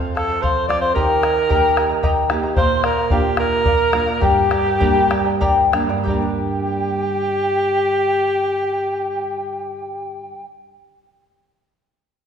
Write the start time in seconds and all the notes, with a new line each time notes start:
Already playing: F2 F3 A3 C4 A4 C5 F5
0.15 A4 C5 F5 A5, bombo rim
0.28 C5 F5
0.41 A4 C5 F5 C6, bombo low
0.68 F3 A3 C4 A4 C5 D5 F5 D6, bombo rim
0.80 C5 F5 C6
0.94 D#3 G4 A#4 D#5 G5 A#5, bombo low
1.22 A#4 D#5 G5 A#5, bombo rim
1.36 D#5 A#5
1.49 A#3 D#4 G4 A#4 D#5 G5 A#5, bombo low
1.76 A#4 D#5 G5 A#5, bombo rim
1.89 A#4 D#5 A#5
2.03 G4 A#4 D#5 G5 A#5, bombo low
2.29 A#3 D#4 G4 A#4 D#5 G5 A#5, bombo rim
2.43 A#4 D#5 A#5
2.56 A#2 A#4 C5 D5 F5 C6, bombo low
2.83 A#4 D5 F5 A#5, bombo rim
2.97 D5 F5
3.10 A#3 D4 F4 G4 A#4 D5 F5 G5, bombo low
3.37 A#4 D5 F5 A#5, bombo rim
3.51 D5 F5
3.65 A#4 D5 F5, bombo low
3.92 A#3 D4 F4 A#4 D5 F5, bombo rim
4.06 D5 F5
4.21 G2 G4 A#4 D5 G5 A#5, bombo low
4.50 A#4 D5 G5 A#5, bombo rim
4.65 A#4 D5 A#5
4.80 G3 A#3 D4 G4 A#4 D5 G5 A#5, bombo rim, bombo low
4.96 bombo rim
5.10 A#4 D5 G5 A#5, bombo rim
5.25 A#4 D5 A#5
5.41 G4 A#4 D5 G5 A#5, bombo rim, bombo low
5.58 bombo rim
5.72 G3 A#3 D4 A#4 D5 G5 A#5, bombo rim
5.89 G2 A#4 D5 A#5, bombo rim
5.98 D3
6.03 G3 G4 A#4 G5, bombo low
6.09 D5 A#5
6.14 A#3
6.22 D4